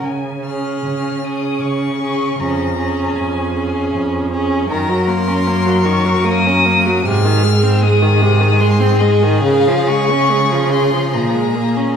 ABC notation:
X:1
M:3/4
L:1/16
Q:1/4=77
K:Db
V:1 name="Violin"
a2 f'4 e'2 d'4 | b4 a4 z4 | b2 c'4 d'2 e'4 | f'4 e'4 c'2 e2 |
f2 d'4 c'2 b4 |]
V:2 name="Violin"
z2 A4 A4 A2 | A2 A4 A4 A2 | B12 | A12- |
A12 |]
V:3 name="Viola" clef=bass
z2 D4 D4 D2 | D2 D4 D4 D2 | E, G, B, D B, G, E, G, B, D B, G, | C, E, A, C A, E, C, E, A, C A, E, |
D, F, A, D A, F, D, F, F, A, B, D |]
V:4 name="Cello" clef=bass
D,4 D,4 D,4 | F,,4 F,,4 F,,4 | G,,12 | A,,12 |
D,8 B,,4 |]